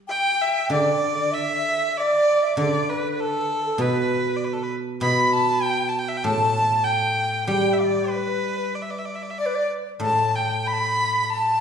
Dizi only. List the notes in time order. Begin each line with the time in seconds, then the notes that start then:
0.08 G5
0.71 D5
1.18 D5
1.32 E5
1.90 E5
1.96 D5 E5
2.43 E5
2.58 D5
2.90 B4
3.21 B4
3.25 A4
3.66 A4
3.82 B4
5.04 B5
5.66 A5
5.70 G5
6.26 A5
6.87 G5
7.48 G5
7.81 D5 E5
8.13 B4 D5
9.39 D5
9.46 B4
9.55 D5
10.00 A5
10.35 G5 A5
10.66 B5
10.73 A5
10.80 B5
11.13 B5
11.29 B5
11.33 A5